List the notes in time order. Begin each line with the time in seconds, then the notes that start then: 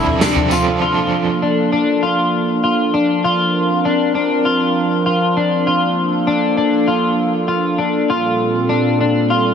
Already playing: C3 F3 C4 D4 E4 A4
0.07 floor tom
0.21 F3 C4 D4, snare, tambourine
0.25 A4
0.36 floor tom
0.51 F4, tambourine
0.81 F3 A#3 D4 F4 A4
1.42 D4
1.72 D4
2.03 F4
2.64 F4
2.94 D4
3.23 C4 F4 A#4
3.85 D4
4.15 D4
4.45 F4
5.06 F4
5.37 D4
5.66 A#3 F4 A4
6.27 D4
6.57 D4
6.88 F4
7.48 F4
7.78 D4
8.09 A#2 G3 A#3 C4 F4
8.69 D4
9.01 D4
9.30 F4